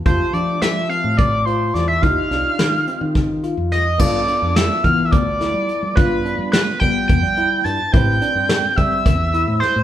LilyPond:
<<
  \new Staff \with { instrumentName = "Analog synth lead" } { \time 7/8 \key g \mixolydian \tempo 4 = 107 c''8 d''8 e''8 f''8 d''8 c''8 d''16 e''16 | f''2~ f''8 r8 ees''8 | d''4 e''8 f''16. e''32 d''4. | b'4 b'8 g''8 g''4 a''8 |
g''4. e''4. c''8 | }
  \new Staff \with { instrumentName = "Grand piano" } { \time 7/8 \key g \mixolydian <a f' g'>2.~ <a f' g'>8 | <ees' f' g'>2.~ <ees' f' g'>8 | <b f' a'>2.~ <b f' a'>8 | <b f' b'>2.~ <b f' b'>8 |
<c' g' b'>2.~ <c' g' b'>8 | }
  \new Staff \with { instrumentName = "Tine electric piano" } { \time 7/8 \key g \mixolydian f'8 d'4 c'4 f'4 | f'8 d'4 c'4 f'4 | f'8 d'4 b4 e'4 | f'8 d'4 b4 e'4 |
e'8 d'4 c'4 e'4 | }
  \new Staff \with { instrumentName = "Fingered electric bass" } { \clef bass \time 7/8 \key g \mixolydian f,16 r16 f8 f8. a,4~ a,16 e,8 | ees,16 r16 c,16 r16 ees8 r16 ees4 f,8. | g,8 r16 f,8 r16 e8 d,8. g16 r16 g16 | g,8. g8 r16 g8 f,16 g8. g,16 r16 |
a,8 r16 g,8 r16 g8 e,8. a,16 r16 a,16 | }
  \new DrumStaff \with { instrumentName = "Drums" } \drummode { \time 7/8 <hh bd>8 hh8 <hh sn>8 hh8 <hh bd>8 hh8 <hh sn>8 | <hh bd>8 <hh sn>8 <hh sn>8 hh8 <hh bd sn>8 hh8 <hh sn>8 | <cymc bd>8 hh8 <hh sn>8 <hh bd>8 <hh bd>8 <hh sn>8 hh8 | <hh bd>8 hh8 <hh sn>8 <hh bd>8 <hh bd>8 hh8 hh8 |
<hh bd>8 hh8 <hh sn>8 <hh bd>8 <hh bd>8 hh8 <hh sn>8 | }
>>